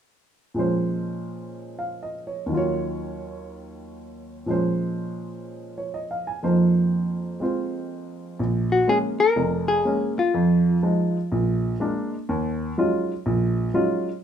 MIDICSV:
0, 0, Header, 1, 3, 480
1, 0, Start_track
1, 0, Key_signature, -5, "minor"
1, 0, Tempo, 488202
1, 550, Time_signature, 4, 2, 24, 8
1, 13999, End_track
2, 0, Start_track
2, 0, Title_t, "Hollow-body jazz guitar"
2, 0, Program_c, 0, 26
2, 8574, Note_on_c, 0, 66, 75
2, 8734, Note_off_c, 0, 66, 0
2, 8744, Note_on_c, 0, 68, 90
2, 8826, Note_off_c, 0, 68, 0
2, 9046, Note_on_c, 0, 70, 94
2, 9516, Note_off_c, 0, 70, 0
2, 9520, Note_on_c, 0, 68, 88
2, 9963, Note_off_c, 0, 68, 0
2, 10019, Note_on_c, 0, 65, 74
2, 11405, Note_off_c, 0, 65, 0
2, 13999, End_track
3, 0, Start_track
3, 0, Title_t, "Grand piano"
3, 0, Program_c, 1, 0
3, 535, Note_on_c, 1, 46, 47
3, 548, Note_on_c, 1, 53, 42
3, 559, Note_on_c, 1, 56, 40
3, 570, Note_on_c, 1, 61, 41
3, 583, Note_on_c, 1, 72, 53
3, 1756, Note_on_c, 1, 77, 41
3, 1992, Note_on_c, 1, 75, 44
3, 2090, Note_off_c, 1, 77, 0
3, 2232, Note_on_c, 1, 73, 44
3, 2364, Note_off_c, 1, 75, 0
3, 2420, Note_on_c, 1, 39, 51
3, 2450, Note_on_c, 1, 51, 44
3, 2467, Note_off_c, 1, 46, 0
3, 2473, Note_off_c, 1, 53, 0
3, 2475, Note_on_c, 1, 54, 44
3, 2479, Note_off_c, 1, 56, 0
3, 2485, Note_off_c, 1, 61, 0
3, 2491, Note_off_c, 1, 72, 0
3, 2502, Note_on_c, 1, 65, 45
3, 2515, Note_off_c, 1, 73, 0
3, 2530, Note_on_c, 1, 73, 56
3, 4371, Note_off_c, 1, 39, 0
3, 4386, Note_off_c, 1, 51, 0
3, 4386, Note_on_c, 1, 46, 44
3, 4395, Note_on_c, 1, 53, 41
3, 4399, Note_off_c, 1, 54, 0
3, 4406, Note_on_c, 1, 56, 42
3, 4412, Note_off_c, 1, 65, 0
3, 4422, Note_on_c, 1, 61, 42
3, 4426, Note_off_c, 1, 73, 0
3, 4430, Note_on_c, 1, 72, 48
3, 5680, Note_on_c, 1, 73, 42
3, 5840, Note_on_c, 1, 75, 46
3, 5927, Note_off_c, 1, 73, 0
3, 6006, Note_on_c, 1, 77, 43
3, 6134, Note_off_c, 1, 75, 0
3, 6167, Note_on_c, 1, 80, 46
3, 6250, Note_off_c, 1, 77, 0
3, 6309, Note_off_c, 1, 53, 0
3, 6314, Note_off_c, 1, 46, 0
3, 6316, Note_off_c, 1, 72, 0
3, 6320, Note_on_c, 1, 41, 45
3, 6324, Note_off_c, 1, 56, 0
3, 6324, Note_on_c, 1, 53, 38
3, 6328, Note_on_c, 1, 58, 41
3, 6330, Note_on_c, 1, 63, 40
3, 6331, Note_on_c, 1, 72, 47
3, 6332, Note_off_c, 1, 61, 0
3, 6410, Note_off_c, 1, 80, 0
3, 7277, Note_on_c, 1, 56, 38
3, 7289, Note_on_c, 1, 60, 39
3, 7291, Note_off_c, 1, 72, 0
3, 7298, Note_on_c, 1, 65, 39
3, 7306, Note_on_c, 1, 72, 44
3, 8238, Note_off_c, 1, 56, 0
3, 8240, Note_off_c, 1, 41, 0
3, 8242, Note_off_c, 1, 53, 0
3, 8244, Note_off_c, 1, 58, 0
3, 8245, Note_off_c, 1, 60, 0
3, 8246, Note_off_c, 1, 63, 0
3, 8249, Note_off_c, 1, 65, 0
3, 8253, Note_off_c, 1, 72, 0
3, 8254, Note_on_c, 1, 34, 61
3, 8663, Note_off_c, 1, 34, 0
3, 8727, Note_on_c, 1, 56, 52
3, 8733, Note_on_c, 1, 58, 43
3, 8738, Note_on_c, 1, 61, 51
3, 9056, Note_off_c, 1, 56, 0
3, 9059, Note_off_c, 1, 58, 0
3, 9061, Note_off_c, 1, 61, 0
3, 9206, Note_on_c, 1, 29, 67
3, 9618, Note_off_c, 1, 29, 0
3, 9685, Note_on_c, 1, 56, 50
3, 9690, Note_on_c, 1, 58, 48
3, 9693, Note_on_c, 1, 61, 56
3, 10014, Note_off_c, 1, 56, 0
3, 10016, Note_off_c, 1, 58, 0
3, 10018, Note_off_c, 1, 61, 0
3, 10167, Note_on_c, 1, 41, 65
3, 10578, Note_off_c, 1, 41, 0
3, 10643, Note_on_c, 1, 53, 49
3, 10647, Note_on_c, 1, 56, 48
3, 10651, Note_on_c, 1, 63, 56
3, 10972, Note_off_c, 1, 53, 0
3, 10974, Note_off_c, 1, 56, 0
3, 10976, Note_off_c, 1, 63, 0
3, 11127, Note_on_c, 1, 34, 63
3, 11537, Note_off_c, 1, 34, 0
3, 11603, Note_on_c, 1, 56, 49
3, 11608, Note_on_c, 1, 58, 47
3, 11612, Note_on_c, 1, 62, 60
3, 11931, Note_off_c, 1, 56, 0
3, 11934, Note_off_c, 1, 58, 0
3, 11935, Note_off_c, 1, 62, 0
3, 12083, Note_on_c, 1, 39, 68
3, 12494, Note_off_c, 1, 39, 0
3, 12562, Note_on_c, 1, 54, 50
3, 12563, Note_on_c, 1, 56, 46
3, 12565, Note_on_c, 1, 61, 45
3, 12568, Note_on_c, 1, 63, 49
3, 12572, Note_on_c, 1, 65, 58
3, 12889, Note_off_c, 1, 54, 0
3, 12890, Note_off_c, 1, 56, 0
3, 12891, Note_off_c, 1, 61, 0
3, 12892, Note_off_c, 1, 63, 0
3, 12895, Note_off_c, 1, 65, 0
3, 13036, Note_on_c, 1, 34, 69
3, 13450, Note_off_c, 1, 34, 0
3, 13508, Note_on_c, 1, 54, 52
3, 13509, Note_on_c, 1, 56, 47
3, 13512, Note_on_c, 1, 61, 49
3, 13515, Note_on_c, 1, 65, 57
3, 13516, Note_on_c, 1, 63, 48
3, 13842, Note_off_c, 1, 54, 0
3, 13842, Note_off_c, 1, 56, 0
3, 13843, Note_off_c, 1, 61, 0
3, 13845, Note_off_c, 1, 65, 0
3, 13846, Note_off_c, 1, 63, 0
3, 13999, End_track
0, 0, End_of_file